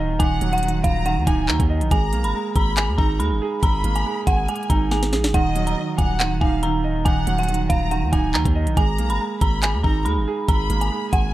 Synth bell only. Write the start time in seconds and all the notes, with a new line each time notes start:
Already playing: A#5
0.19 G#5
0.53 F#5
0.84 F5
1.06 F#5
1.27 G#5
1.48 A#5
1.91 G#5
2.24 B5
2.56 A#5
2.77 G#5
2.98 A#5
3.20 B5
3.63 A#5
3.96 G#5
4.27 F#5
4.49 G#5
4.70 A#5
4.92 G#5
5.34 F#5
5.67 A#5
5.98 G#5
6.20 F#5
6.41 G#5
6.63 A#5
7.05 G#5
7.39 F#5
7.70 F5
7.91 F#5
8.13 G#5
8.34 A#5
8.77 G#5
9.10 B5
9.42 A#5
9.63 G#5
9.83 A#5
10.05 B5
10.49 A#5
10.81 G#5
11.13 F#5